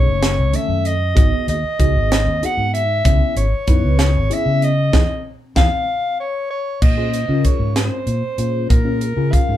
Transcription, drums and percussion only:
0, 0, Header, 1, 2, 480
1, 0, Start_track
1, 0, Tempo, 628272
1, 888, Time_signature, 6, 3, 24, 8
1, 7311, End_track
2, 0, Start_track
2, 0, Title_t, "Drums"
2, 172, Note_on_c, 9, 42, 80
2, 173, Note_on_c, 9, 38, 102
2, 248, Note_off_c, 9, 42, 0
2, 249, Note_off_c, 9, 38, 0
2, 408, Note_on_c, 9, 42, 60
2, 485, Note_off_c, 9, 42, 0
2, 650, Note_on_c, 9, 42, 58
2, 727, Note_off_c, 9, 42, 0
2, 891, Note_on_c, 9, 36, 105
2, 891, Note_on_c, 9, 42, 83
2, 967, Note_off_c, 9, 36, 0
2, 968, Note_off_c, 9, 42, 0
2, 1132, Note_on_c, 9, 42, 61
2, 1208, Note_off_c, 9, 42, 0
2, 1372, Note_on_c, 9, 36, 76
2, 1372, Note_on_c, 9, 42, 59
2, 1448, Note_off_c, 9, 36, 0
2, 1448, Note_off_c, 9, 42, 0
2, 1617, Note_on_c, 9, 42, 89
2, 1618, Note_on_c, 9, 38, 110
2, 1694, Note_off_c, 9, 42, 0
2, 1695, Note_off_c, 9, 38, 0
2, 1857, Note_on_c, 9, 42, 63
2, 1933, Note_off_c, 9, 42, 0
2, 2098, Note_on_c, 9, 42, 61
2, 2175, Note_off_c, 9, 42, 0
2, 2330, Note_on_c, 9, 42, 83
2, 2331, Note_on_c, 9, 36, 103
2, 2407, Note_off_c, 9, 42, 0
2, 2408, Note_off_c, 9, 36, 0
2, 2571, Note_on_c, 9, 42, 63
2, 2648, Note_off_c, 9, 42, 0
2, 2807, Note_on_c, 9, 42, 59
2, 2809, Note_on_c, 9, 36, 76
2, 2883, Note_off_c, 9, 42, 0
2, 2885, Note_off_c, 9, 36, 0
2, 3047, Note_on_c, 9, 42, 87
2, 3048, Note_on_c, 9, 38, 117
2, 3123, Note_off_c, 9, 42, 0
2, 3124, Note_off_c, 9, 38, 0
2, 3291, Note_on_c, 9, 42, 61
2, 3368, Note_off_c, 9, 42, 0
2, 3531, Note_on_c, 9, 42, 59
2, 3608, Note_off_c, 9, 42, 0
2, 3769, Note_on_c, 9, 36, 94
2, 3770, Note_on_c, 9, 38, 91
2, 3846, Note_off_c, 9, 36, 0
2, 3846, Note_off_c, 9, 38, 0
2, 4249, Note_on_c, 9, 36, 87
2, 4249, Note_on_c, 9, 38, 89
2, 4325, Note_off_c, 9, 36, 0
2, 4325, Note_off_c, 9, 38, 0
2, 5211, Note_on_c, 9, 36, 96
2, 5211, Note_on_c, 9, 49, 80
2, 5287, Note_off_c, 9, 36, 0
2, 5288, Note_off_c, 9, 49, 0
2, 5451, Note_on_c, 9, 42, 53
2, 5528, Note_off_c, 9, 42, 0
2, 5688, Note_on_c, 9, 42, 60
2, 5690, Note_on_c, 9, 36, 64
2, 5765, Note_off_c, 9, 42, 0
2, 5766, Note_off_c, 9, 36, 0
2, 5927, Note_on_c, 9, 42, 78
2, 5928, Note_on_c, 9, 38, 94
2, 6004, Note_off_c, 9, 42, 0
2, 6005, Note_off_c, 9, 38, 0
2, 6164, Note_on_c, 9, 42, 55
2, 6241, Note_off_c, 9, 42, 0
2, 6404, Note_on_c, 9, 42, 55
2, 6480, Note_off_c, 9, 42, 0
2, 6649, Note_on_c, 9, 36, 96
2, 6649, Note_on_c, 9, 42, 72
2, 6725, Note_off_c, 9, 36, 0
2, 6726, Note_off_c, 9, 42, 0
2, 6885, Note_on_c, 9, 42, 52
2, 6961, Note_off_c, 9, 42, 0
2, 7129, Note_on_c, 9, 36, 68
2, 7132, Note_on_c, 9, 42, 56
2, 7205, Note_off_c, 9, 36, 0
2, 7208, Note_off_c, 9, 42, 0
2, 7311, End_track
0, 0, End_of_file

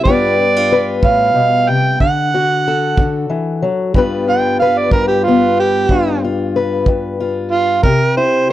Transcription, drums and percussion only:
0, 0, Header, 1, 2, 480
1, 0, Start_track
1, 0, Tempo, 648649
1, 44, Time_signature, 12, 3, 24, 8
1, 6308, End_track
2, 0, Start_track
2, 0, Title_t, "Drums"
2, 40, Note_on_c, 9, 36, 63
2, 114, Note_off_c, 9, 36, 0
2, 760, Note_on_c, 9, 36, 71
2, 834, Note_off_c, 9, 36, 0
2, 1483, Note_on_c, 9, 36, 52
2, 1557, Note_off_c, 9, 36, 0
2, 2201, Note_on_c, 9, 36, 66
2, 2275, Note_off_c, 9, 36, 0
2, 2918, Note_on_c, 9, 36, 60
2, 2992, Note_off_c, 9, 36, 0
2, 3636, Note_on_c, 9, 36, 66
2, 3710, Note_off_c, 9, 36, 0
2, 4359, Note_on_c, 9, 36, 57
2, 4433, Note_off_c, 9, 36, 0
2, 5078, Note_on_c, 9, 36, 62
2, 5152, Note_off_c, 9, 36, 0
2, 5798, Note_on_c, 9, 36, 67
2, 5872, Note_off_c, 9, 36, 0
2, 6308, End_track
0, 0, End_of_file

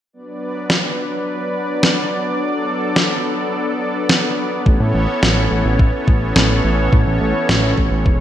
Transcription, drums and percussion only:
0, 0, Header, 1, 2, 480
1, 0, Start_track
1, 0, Tempo, 566038
1, 113, Time_signature, 4, 2, 24, 8
1, 6957, End_track
2, 0, Start_track
2, 0, Title_t, "Drums"
2, 592, Note_on_c, 9, 38, 116
2, 677, Note_off_c, 9, 38, 0
2, 1553, Note_on_c, 9, 38, 114
2, 1637, Note_off_c, 9, 38, 0
2, 2512, Note_on_c, 9, 38, 120
2, 2597, Note_off_c, 9, 38, 0
2, 3472, Note_on_c, 9, 38, 118
2, 3557, Note_off_c, 9, 38, 0
2, 3953, Note_on_c, 9, 36, 123
2, 4037, Note_off_c, 9, 36, 0
2, 4433, Note_on_c, 9, 38, 120
2, 4517, Note_off_c, 9, 38, 0
2, 4913, Note_on_c, 9, 36, 124
2, 4998, Note_off_c, 9, 36, 0
2, 5153, Note_on_c, 9, 36, 108
2, 5237, Note_off_c, 9, 36, 0
2, 5393, Note_on_c, 9, 38, 119
2, 5477, Note_off_c, 9, 38, 0
2, 5872, Note_on_c, 9, 36, 120
2, 5957, Note_off_c, 9, 36, 0
2, 6352, Note_on_c, 9, 38, 122
2, 6437, Note_off_c, 9, 38, 0
2, 6592, Note_on_c, 9, 36, 64
2, 6677, Note_off_c, 9, 36, 0
2, 6833, Note_on_c, 9, 36, 118
2, 6917, Note_off_c, 9, 36, 0
2, 6957, End_track
0, 0, End_of_file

